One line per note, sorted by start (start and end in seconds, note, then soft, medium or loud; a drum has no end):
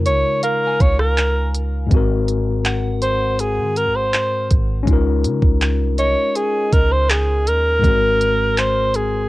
0.00 1.85 C#3 medium
0.00 1.86 G#3 medium
0.00 1.87 D#4 medium
0.00 1.89 F4 medium
0.00 1.90 A#4 medium
0.06 0.24 C#2 loud
0.06 0.40 C#5 loud
0.06 closed hi-hat medium
0.43 0.82 A#4 loud
0.43 2.24 F5 medium
0.43 closed hi-hat medium
0.67 2.45 G#5 medium
0.80 1.87 C#2 loud
0.80 0.99 C#5 loud
0.80 kick medium
0.80 closed hi-hat medium
0.99 1.51 A#4 medium
0.99 cross-stick loud
1.18 clap loud
1.18 closed hi-hat medium
1.55 closed hi-hat medium
1.87 4.81 G#2 medium
1.87 4.82 G#3 medium
1.91 3.60 G#1 loud
1.91 4.84 C4 medium
1.91 4.85 F#4 medium
1.91 kick loud
1.91 closed hi-hat medium
1.96 4.86 A#4 medium
2.28 closed hi-hat medium
2.65 4.66 F#5 medium
2.65 clap loud
2.65 closed hi-hat medium
3.02 3.42 C5 loud
3.02 closed hi-hat medium
3.39 3.79 G#4 loud
3.39 closed hi-hat medium
3.58 3.87 D#3 loud
3.76 3.97 A#4 medium
3.76 closed hi-hat medium
3.86 4.12 G#1 loud
3.95 4.51 C5 loud
4.14 clap loud
4.14 closed hi-hat medium
4.51 4.86 G#1 loud
4.51 kick medium
4.51 closed hi-hat medium
4.83 7.79 G#3 medium
4.83 7.78 C#4 medium
4.87 5.26 C#2 loud
4.87 7.80 D#4 medium
4.87 7.81 F4 medium
4.87 kick loud
4.87 closed hi-hat medium
4.93 7.82 A#4 medium
5.24 5.42 C#3 medium
5.24 closed hi-hat medium
5.42 5.82 C#2 loud
5.42 kick loud
5.61 clap loud
5.61 closed hi-hat medium
5.80 6.15 C2 loud
5.98 6.38 C#5 loud
5.98 7.99 D#5 medium
5.98 closed hi-hat medium
6.35 6.75 G#4 loud
6.35 closed hi-hat medium
6.73 7.49 C#2 loud
6.73 6.93 A#4 medium
6.73 kick medium
6.73 closed hi-hat medium
6.92 7.12 C5 loud
7.10 7.49 G#4 loud
7.10 clap loud
7.10 closed hi-hat medium
7.47 7.82 D#2 loud
7.47 8.60 A#4 loud
7.47 closed hi-hat medium
7.79 9.29 G#2 medium
7.79 9.29 G#3 medium
7.84 9.29 G#1 loud
7.84 9.29 C4 medium
7.84 9.29 F#4 medium
7.84 kick loud
7.84 closed hi-hat medium
7.89 9.29 A#4 medium
8.21 closed hi-hat medium
8.57 8.97 C5 loud
8.57 clap loud
8.57 closed hi-hat medium
8.94 9.29 G#4 medium
8.94 closed hi-hat medium